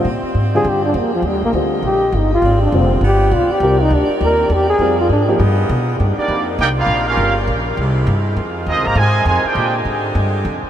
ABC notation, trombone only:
X:1
M:4/4
L:1/8
Q:"Swing" 1/4=202
K:Cm
V:1 name="Trombone"
z3 A G D B, F, | G, B, z2 G2 E F- | F D C z G2 F G- | G E D z B2 G A- |
A F D z4 z | z8 | z8 | z8 |
z8 |]